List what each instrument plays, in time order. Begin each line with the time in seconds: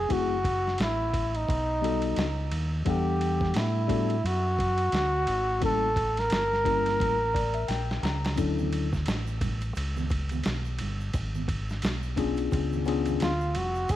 Already playing: flugelhorn G#4
0.09 fingered electric bass F#1, tine electric piano A3 C4 E4 F#4 G#4, flugelhorn F#4, kick, ride
0.44 kick, ride
0.67 snare
0.78 fingered electric bass A1, flugelhorn E4, snare, hi-hat pedal, ride
1.13 kick, ride
1.35 flugelhorn D#4, ride
1.49 fingered electric bass B1, kick, ride
1.81 tine electric piano G3 B3 D#4 F#4 A4, ride
2.02 ride
2.16 fingered electric bass C#2, snare, hi-hat pedal, ride
2.51 fingered electric bass D#2, ride
2.85 fingered electric bass E2, tine electric piano G3 B3 D4 A4 F#5, flugelhorn G4, kick, ride
3.21 ride
3.41 kick, snare
3.54 fingered electric bass A2, flugelhorn E4, snare, hi-hat pedal, ride
3.87 tine electric piano G3 B3 D4 F#4 A4, kick, ride
4.10 ride
4.24 fingered electric bass F#2, flugelhorn F#4, ride
4.59 kick, ride
4.78 ride
4.92 fingered electric bass D2, snare, hi-hat pedal, ride
5.27 fingered electric bass G#1, ride
5.60 fingered electric bass A1, tine electric piano G3 A#3 C#4 E4 A4, kick, ride
5.65 flugelhorn A4
5.96 kick, ride
6.17 flugelhorn A#4, snare, ride
6.30 fingered electric bass G1, snare, hi-hat pedal, ride
6.53 snare
6.64 tine electric piano G3 A#3 C#4 E4 A#4, kick, ride
6.86 snare, ride
7.00 fingered electric bass A1, kick, ride
7.34 tine electric piano D5, kick, ride
7.54 tine electric piano E5, ride
7.68 fingered electric bass A#1, tine electric piano G5, snare, hi-hat pedal, ride
7.91 snare
8.03 fingered electric bass C#2, tine electric piano A#5, snare, ride
8.25 snare, ride
8.36 fingered electric bass D2, tine electric piano F#3 C#4 D4 E4 A4, kick, ride, shaker
8.59 high conga, shaker
8.72 ride, shaker
8.93 kick, snare, shaker
9.06 fingered electric bass A1, snare, hi-hat pedal, ride, shaker
9.27 shaker
9.41 kick, ride, low conga, shaker
9.61 ride, shaker
9.75 fingered electric bass C#2, ride, shaker
9.97 high conga, shaker
10.09 kick, ride, shaker
10.29 ride, high conga, shaker
10.44 fingered electric bass B1, snare, hi-hat pedal, ride, shaker
10.65 shaker
10.79 fingered electric bass G1, ride, low conga, shaker
11.00 shaker
11.14 fingered electric bass G#1, kick, ride, shaker
11.35 high conga, shaker
11.48 kick, ride, shaker
11.69 snare, shaker
11.82 fingered electric bass B1, snare, hi-hat pedal, ride, shaker
12.03 shaker
12.16 tine electric piano B3 C#4 D4 F4 G#4, kick, ride, low conga, shaker
12.37 ride, shaker
12.52 fingered electric bass C#2, kick, ride, shaker
12.73 high conga, shaker
12.85 tine electric piano B3 C#4 D4 F4 G#4, ride, shaker
13.06 ride, high conga, shaker
13.20 fingered electric bass D2, flugelhorn F4, snare, hi-hat pedal, ride, shaker
13.41 shaker
13.54 fingered electric bass F1, flugelhorn F#4, ride, low conga, shaker
13.75 shaker
13.88 fingered electric bass F#1, flugelhorn G#4, kick, ride, shaker